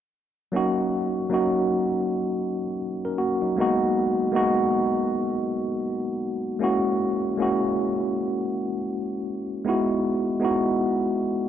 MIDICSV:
0, 0, Header, 1, 2, 480
1, 0, Start_track
1, 0, Tempo, 759494
1, 344, Time_signature, 4, 2, 24, 8
1, 7260, End_track
2, 0, Start_track
2, 0, Title_t, "Tine electric piano"
2, 0, Program_c, 0, 4
2, 327, Note_on_c, 0, 54, 70
2, 335, Note_on_c, 0, 58, 74
2, 342, Note_on_c, 0, 61, 64
2, 350, Note_on_c, 0, 63, 66
2, 356, Note_on_c, 0, 66, 84
2, 461, Control_c, 0, 64, 127
2, 753, Note_off_c, 0, 54, 0
2, 756, Note_off_c, 0, 58, 0
2, 760, Note_off_c, 0, 61, 0
2, 764, Note_off_c, 0, 63, 0
2, 767, Note_off_c, 0, 66, 0
2, 818, Note_on_c, 0, 54, 74
2, 825, Note_on_c, 0, 58, 66
2, 833, Note_on_c, 0, 61, 56
2, 840, Note_on_c, 0, 63, 67
2, 848, Note_on_c, 0, 66, 73
2, 1638, Note_off_c, 0, 54, 0
2, 1642, Note_off_c, 0, 58, 0
2, 1646, Note_off_c, 0, 61, 0
2, 1649, Note_off_c, 0, 63, 0
2, 1653, Note_off_c, 0, 66, 0
2, 1928, Note_on_c, 0, 70, 55
2, 1930, Note_on_c, 0, 61, 45
2, 2012, Note_on_c, 0, 66, 66
2, 2016, Note_on_c, 0, 58, 53
2, 2019, Note_off_c, 0, 70, 0
2, 2020, Note_off_c, 0, 61, 0
2, 2155, Note_off_c, 0, 66, 0
2, 2158, Note_off_c, 0, 58, 0
2, 2158, Note_on_c, 0, 63, 50
2, 2161, Note_on_c, 0, 54, 42
2, 2254, Note_on_c, 0, 56, 73
2, 2261, Note_on_c, 0, 58, 67
2, 2268, Note_off_c, 0, 63, 0
2, 2268, Note_on_c, 0, 59, 67
2, 2273, Control_c, 0, 64, 0
2, 2276, Note_on_c, 0, 63, 69
2, 2283, Note_on_c, 0, 66, 83
2, 2392, Control_c, 0, 64, 127
2, 2393, Note_off_c, 0, 54, 0
2, 2676, Note_off_c, 0, 56, 0
2, 2680, Note_off_c, 0, 58, 0
2, 2683, Note_off_c, 0, 59, 0
2, 2687, Note_off_c, 0, 63, 0
2, 2690, Note_off_c, 0, 66, 0
2, 2727, Note_on_c, 0, 56, 69
2, 2735, Note_on_c, 0, 58, 67
2, 2741, Note_on_c, 0, 59, 60
2, 2750, Note_on_c, 0, 63, 66
2, 2757, Note_on_c, 0, 66, 89
2, 3553, Note_off_c, 0, 56, 0
2, 3557, Note_off_c, 0, 58, 0
2, 3560, Note_off_c, 0, 59, 0
2, 3564, Note_off_c, 0, 63, 0
2, 3568, Note_off_c, 0, 66, 0
2, 4165, Note_on_c, 0, 56, 68
2, 4171, Note_on_c, 0, 58, 69
2, 4178, Note_on_c, 0, 61, 70
2, 4187, Note_on_c, 0, 64, 67
2, 4192, Control_c, 0, 64, 0
2, 4194, Note_on_c, 0, 66, 82
2, 4287, Control_c, 0, 64, 127
2, 4591, Note_off_c, 0, 56, 0
2, 4594, Note_off_c, 0, 58, 0
2, 4598, Note_off_c, 0, 61, 0
2, 4603, Note_off_c, 0, 64, 0
2, 4606, Note_off_c, 0, 66, 0
2, 4660, Note_on_c, 0, 56, 65
2, 4668, Note_on_c, 0, 58, 65
2, 4675, Note_on_c, 0, 61, 68
2, 4683, Note_on_c, 0, 64, 64
2, 4689, Note_on_c, 0, 66, 77
2, 5479, Note_off_c, 0, 56, 0
2, 5483, Note_off_c, 0, 58, 0
2, 5487, Note_off_c, 0, 61, 0
2, 5491, Note_off_c, 0, 64, 0
2, 5494, Note_off_c, 0, 66, 0
2, 6096, Note_on_c, 0, 56, 74
2, 6103, Note_on_c, 0, 59, 69
2, 6110, Note_on_c, 0, 63, 66
2, 6113, Control_c, 0, 64, 0
2, 6117, Note_on_c, 0, 64, 75
2, 6124, Note_on_c, 0, 66, 76
2, 6216, Control_c, 0, 64, 127
2, 6517, Note_off_c, 0, 56, 0
2, 6521, Note_off_c, 0, 59, 0
2, 6524, Note_off_c, 0, 63, 0
2, 6527, Note_off_c, 0, 64, 0
2, 6531, Note_off_c, 0, 66, 0
2, 6571, Note_on_c, 0, 56, 66
2, 6578, Note_on_c, 0, 59, 64
2, 6586, Note_on_c, 0, 63, 64
2, 6594, Note_on_c, 0, 64, 65
2, 6601, Note_on_c, 0, 66, 75
2, 7260, Note_off_c, 0, 56, 0
2, 7260, Note_off_c, 0, 59, 0
2, 7260, Note_off_c, 0, 63, 0
2, 7260, Note_off_c, 0, 64, 0
2, 7260, Note_off_c, 0, 66, 0
2, 7260, End_track
0, 0, End_of_file